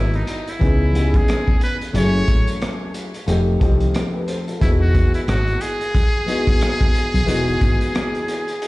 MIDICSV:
0, 0, Header, 1, 5, 480
1, 0, Start_track
1, 0, Key_signature, 4, "major"
1, 0, Tempo, 666667
1, 1402, Time_signature, 4, 2, 24, 8
1, 6247, End_track
2, 0, Start_track
2, 0, Title_t, "Muted trumpet"
2, 0, Program_c, 0, 59
2, 0, Note_on_c, 0, 64, 76
2, 113, Note_on_c, 0, 63, 69
2, 124, Note_off_c, 0, 64, 0
2, 357, Note_on_c, 0, 64, 73
2, 368, Note_off_c, 0, 63, 0
2, 839, Note_on_c, 0, 68, 85
2, 850, Note_off_c, 0, 64, 0
2, 1171, Note_off_c, 0, 68, 0
2, 1177, Note_on_c, 0, 71, 92
2, 1282, Note_off_c, 0, 71, 0
2, 1420, Note_on_c, 0, 73, 109
2, 1862, Note_off_c, 0, 73, 0
2, 3325, Note_on_c, 0, 64, 90
2, 3387, Note_off_c, 0, 64, 0
2, 3463, Note_on_c, 0, 66, 87
2, 3686, Note_off_c, 0, 66, 0
2, 3708, Note_on_c, 0, 64, 73
2, 3752, Note_off_c, 0, 64, 0
2, 3807, Note_on_c, 0, 66, 94
2, 4042, Note_on_c, 0, 68, 105
2, 4053, Note_off_c, 0, 66, 0
2, 6247, Note_off_c, 0, 68, 0
2, 6247, End_track
3, 0, Start_track
3, 0, Title_t, "Grand piano"
3, 0, Program_c, 1, 0
3, 0, Note_on_c, 1, 52, 67
3, 0, Note_on_c, 1, 56, 62
3, 0, Note_on_c, 1, 59, 64
3, 0, Note_on_c, 1, 66, 75
3, 0, Note_on_c, 1, 75, 70
3, 287, Note_off_c, 1, 52, 0
3, 290, Note_off_c, 1, 56, 0
3, 293, Note_off_c, 1, 59, 0
3, 297, Note_off_c, 1, 75, 0
3, 300, Note_off_c, 1, 66, 0
3, 424, Note_on_c, 1, 52, 68
3, 431, Note_on_c, 1, 59, 61
3, 437, Note_on_c, 1, 61, 58
3, 443, Note_on_c, 1, 63, 61
3, 450, Note_on_c, 1, 68, 72
3, 640, Note_off_c, 1, 52, 0
3, 643, Note_off_c, 1, 59, 0
3, 646, Note_off_c, 1, 61, 0
3, 649, Note_off_c, 1, 63, 0
3, 652, Note_off_c, 1, 68, 0
3, 666, Note_on_c, 1, 52, 57
3, 671, Note_on_c, 1, 59, 59
3, 679, Note_on_c, 1, 61, 60
3, 685, Note_on_c, 1, 63, 60
3, 691, Note_on_c, 1, 67, 60
3, 738, Note_on_c, 1, 68, 76
3, 741, Note_off_c, 1, 67, 0
3, 1293, Note_off_c, 1, 52, 0
3, 1296, Note_off_c, 1, 59, 0
3, 1300, Note_off_c, 1, 61, 0
3, 1303, Note_off_c, 1, 63, 0
3, 1329, Note_off_c, 1, 68, 0
3, 1390, Note_on_c, 1, 54, 72
3, 1394, Note_on_c, 1, 56, 54
3, 1401, Note_on_c, 1, 61, 59
3, 1408, Note_on_c, 1, 64, 69
3, 1414, Note_on_c, 1, 68, 74
3, 1442, Note_on_c, 1, 57, 62
3, 1452, Note_off_c, 1, 56, 0
3, 2209, Note_off_c, 1, 54, 0
3, 2215, Note_off_c, 1, 61, 0
3, 2218, Note_off_c, 1, 64, 0
3, 2221, Note_off_c, 1, 68, 0
3, 2235, Note_off_c, 1, 57, 0
3, 2349, Note_on_c, 1, 53, 71
3, 2355, Note_on_c, 1, 57, 77
3, 2361, Note_on_c, 1, 60, 72
3, 2368, Note_on_c, 1, 63, 65
3, 2374, Note_on_c, 1, 67, 83
3, 2562, Note_off_c, 1, 53, 0
3, 2565, Note_off_c, 1, 57, 0
3, 2568, Note_off_c, 1, 60, 0
3, 2571, Note_off_c, 1, 63, 0
3, 2574, Note_off_c, 1, 67, 0
3, 2590, Note_on_c, 1, 53, 82
3, 2596, Note_on_c, 1, 57, 68
3, 2601, Note_on_c, 1, 60, 73
3, 2607, Note_on_c, 1, 63, 69
3, 2613, Note_on_c, 1, 67, 86
3, 2847, Note_off_c, 1, 67, 0
3, 2981, Note_on_c, 1, 71, 63
3, 2984, Note_on_c, 1, 67, 53
3, 3077, Note_off_c, 1, 71, 0
3, 3079, Note_off_c, 1, 67, 0
3, 3079, Note_on_c, 1, 72, 66
3, 3084, Note_on_c, 1, 69, 51
3, 3210, Note_off_c, 1, 69, 0
3, 3213, Note_off_c, 1, 72, 0
3, 3215, Note_off_c, 1, 53, 0
3, 3218, Note_off_c, 1, 57, 0
3, 3221, Note_off_c, 1, 60, 0
3, 3221, Note_on_c, 1, 69, 56
3, 3224, Note_off_c, 1, 63, 0
3, 3226, Note_on_c, 1, 65, 42
3, 3312, Note_on_c, 1, 52, 73
3, 3315, Note_on_c, 1, 56, 67
3, 3322, Note_on_c, 1, 59, 66
3, 3329, Note_on_c, 1, 63, 65
3, 3334, Note_on_c, 1, 66, 78
3, 3449, Note_off_c, 1, 69, 0
3, 3452, Note_off_c, 1, 65, 0
3, 4130, Note_off_c, 1, 52, 0
3, 4132, Note_off_c, 1, 56, 0
3, 4135, Note_off_c, 1, 59, 0
3, 4139, Note_off_c, 1, 63, 0
3, 4141, Note_off_c, 1, 66, 0
3, 4506, Note_on_c, 1, 52, 58
3, 4512, Note_on_c, 1, 56, 60
3, 4517, Note_on_c, 1, 59, 61
3, 4523, Note_on_c, 1, 63, 58
3, 4532, Note_on_c, 1, 66, 74
3, 5134, Note_off_c, 1, 52, 0
3, 5137, Note_off_c, 1, 56, 0
3, 5139, Note_off_c, 1, 59, 0
3, 5142, Note_off_c, 1, 63, 0
3, 5146, Note_off_c, 1, 66, 0
3, 5227, Note_on_c, 1, 52, 96
3, 5233, Note_on_c, 1, 56, 73
3, 5239, Note_on_c, 1, 59, 81
3, 5245, Note_on_c, 1, 63, 74
3, 5250, Note_on_c, 1, 66, 86
3, 6048, Note_off_c, 1, 52, 0
3, 6051, Note_off_c, 1, 56, 0
3, 6054, Note_off_c, 1, 59, 0
3, 6057, Note_off_c, 1, 63, 0
3, 6059, Note_off_c, 1, 66, 0
3, 6247, End_track
4, 0, Start_track
4, 0, Title_t, "Fretless electric bass"
4, 0, Program_c, 2, 35
4, 0, Note_on_c, 2, 32, 80
4, 158, Note_off_c, 2, 32, 0
4, 441, Note_on_c, 2, 37, 92
4, 835, Note_off_c, 2, 37, 0
4, 1397, Note_on_c, 2, 30, 102
4, 1596, Note_off_c, 2, 30, 0
4, 1643, Note_on_c, 2, 33, 84
4, 1757, Note_off_c, 2, 33, 0
4, 2358, Note_on_c, 2, 29, 84
4, 2557, Note_off_c, 2, 29, 0
4, 2601, Note_on_c, 2, 36, 76
4, 2798, Note_off_c, 2, 36, 0
4, 3322, Note_on_c, 2, 28, 100
4, 3633, Note_off_c, 2, 28, 0
4, 3801, Note_on_c, 2, 32, 82
4, 3998, Note_off_c, 2, 32, 0
4, 5141, Note_on_c, 2, 35, 73
4, 5242, Note_off_c, 2, 35, 0
4, 5242, Note_on_c, 2, 28, 98
4, 5439, Note_off_c, 2, 28, 0
4, 5482, Note_on_c, 2, 32, 68
4, 5596, Note_off_c, 2, 32, 0
4, 6247, End_track
5, 0, Start_track
5, 0, Title_t, "Drums"
5, 97, Note_on_c, 9, 42, 27
5, 169, Note_off_c, 9, 42, 0
5, 197, Note_on_c, 9, 42, 70
5, 269, Note_off_c, 9, 42, 0
5, 341, Note_on_c, 9, 42, 46
5, 413, Note_off_c, 9, 42, 0
5, 441, Note_on_c, 9, 36, 87
5, 443, Note_on_c, 9, 42, 60
5, 513, Note_off_c, 9, 36, 0
5, 515, Note_off_c, 9, 42, 0
5, 685, Note_on_c, 9, 42, 71
5, 757, Note_off_c, 9, 42, 0
5, 821, Note_on_c, 9, 36, 89
5, 822, Note_on_c, 9, 42, 46
5, 893, Note_off_c, 9, 36, 0
5, 894, Note_off_c, 9, 42, 0
5, 923, Note_on_c, 9, 42, 89
5, 934, Note_on_c, 9, 37, 109
5, 995, Note_off_c, 9, 42, 0
5, 1006, Note_off_c, 9, 37, 0
5, 1063, Note_on_c, 9, 36, 72
5, 1135, Note_off_c, 9, 36, 0
5, 1160, Note_on_c, 9, 42, 75
5, 1232, Note_off_c, 9, 42, 0
5, 1306, Note_on_c, 9, 42, 41
5, 1378, Note_off_c, 9, 42, 0
5, 1403, Note_on_c, 9, 42, 93
5, 1475, Note_off_c, 9, 42, 0
5, 1640, Note_on_c, 9, 42, 66
5, 1642, Note_on_c, 9, 36, 69
5, 1712, Note_off_c, 9, 42, 0
5, 1714, Note_off_c, 9, 36, 0
5, 1781, Note_on_c, 9, 42, 50
5, 1853, Note_off_c, 9, 42, 0
5, 1883, Note_on_c, 9, 42, 75
5, 1890, Note_on_c, 9, 37, 93
5, 1955, Note_off_c, 9, 42, 0
5, 1962, Note_off_c, 9, 37, 0
5, 2119, Note_on_c, 9, 42, 66
5, 2191, Note_off_c, 9, 42, 0
5, 2263, Note_on_c, 9, 42, 43
5, 2335, Note_off_c, 9, 42, 0
5, 2360, Note_on_c, 9, 42, 74
5, 2432, Note_off_c, 9, 42, 0
5, 2600, Note_on_c, 9, 36, 86
5, 2601, Note_on_c, 9, 42, 81
5, 2672, Note_off_c, 9, 36, 0
5, 2673, Note_off_c, 9, 42, 0
5, 2739, Note_on_c, 9, 42, 44
5, 2811, Note_off_c, 9, 42, 0
5, 2840, Note_on_c, 9, 42, 89
5, 2851, Note_on_c, 9, 37, 95
5, 2912, Note_off_c, 9, 42, 0
5, 2923, Note_off_c, 9, 37, 0
5, 3080, Note_on_c, 9, 42, 67
5, 3152, Note_off_c, 9, 42, 0
5, 3225, Note_on_c, 9, 42, 40
5, 3297, Note_off_c, 9, 42, 0
5, 3323, Note_on_c, 9, 36, 94
5, 3324, Note_on_c, 9, 42, 91
5, 3395, Note_off_c, 9, 36, 0
5, 3396, Note_off_c, 9, 42, 0
5, 3562, Note_on_c, 9, 36, 78
5, 3562, Note_on_c, 9, 42, 73
5, 3634, Note_off_c, 9, 36, 0
5, 3634, Note_off_c, 9, 42, 0
5, 3702, Note_on_c, 9, 42, 47
5, 3774, Note_off_c, 9, 42, 0
5, 3802, Note_on_c, 9, 42, 82
5, 3808, Note_on_c, 9, 37, 99
5, 3874, Note_off_c, 9, 42, 0
5, 3880, Note_off_c, 9, 37, 0
5, 3941, Note_on_c, 9, 42, 30
5, 4013, Note_off_c, 9, 42, 0
5, 4038, Note_on_c, 9, 42, 69
5, 4110, Note_off_c, 9, 42, 0
5, 4182, Note_on_c, 9, 42, 39
5, 4254, Note_off_c, 9, 42, 0
5, 4281, Note_on_c, 9, 36, 85
5, 4281, Note_on_c, 9, 42, 71
5, 4290, Note_on_c, 9, 37, 31
5, 4353, Note_off_c, 9, 36, 0
5, 4353, Note_off_c, 9, 42, 0
5, 4362, Note_off_c, 9, 37, 0
5, 4523, Note_on_c, 9, 42, 73
5, 4595, Note_off_c, 9, 42, 0
5, 4660, Note_on_c, 9, 36, 83
5, 4660, Note_on_c, 9, 42, 40
5, 4732, Note_off_c, 9, 36, 0
5, 4732, Note_off_c, 9, 42, 0
5, 4760, Note_on_c, 9, 42, 84
5, 4771, Note_on_c, 9, 37, 89
5, 4832, Note_off_c, 9, 42, 0
5, 4843, Note_off_c, 9, 37, 0
5, 4898, Note_on_c, 9, 42, 30
5, 4901, Note_on_c, 9, 36, 79
5, 4970, Note_off_c, 9, 42, 0
5, 4973, Note_off_c, 9, 36, 0
5, 4998, Note_on_c, 9, 42, 77
5, 5070, Note_off_c, 9, 42, 0
5, 5142, Note_on_c, 9, 42, 41
5, 5214, Note_off_c, 9, 42, 0
5, 5243, Note_on_c, 9, 42, 100
5, 5315, Note_off_c, 9, 42, 0
5, 5383, Note_on_c, 9, 42, 32
5, 5455, Note_off_c, 9, 42, 0
5, 5482, Note_on_c, 9, 36, 77
5, 5482, Note_on_c, 9, 42, 67
5, 5554, Note_off_c, 9, 36, 0
5, 5554, Note_off_c, 9, 42, 0
5, 5623, Note_on_c, 9, 42, 48
5, 5695, Note_off_c, 9, 42, 0
5, 5723, Note_on_c, 9, 42, 81
5, 5729, Note_on_c, 9, 37, 103
5, 5795, Note_off_c, 9, 42, 0
5, 5801, Note_off_c, 9, 37, 0
5, 5866, Note_on_c, 9, 42, 31
5, 5938, Note_off_c, 9, 42, 0
5, 5964, Note_on_c, 9, 42, 70
5, 6036, Note_off_c, 9, 42, 0
5, 6105, Note_on_c, 9, 42, 44
5, 6177, Note_off_c, 9, 42, 0
5, 6206, Note_on_c, 9, 42, 68
5, 6247, Note_off_c, 9, 42, 0
5, 6247, End_track
0, 0, End_of_file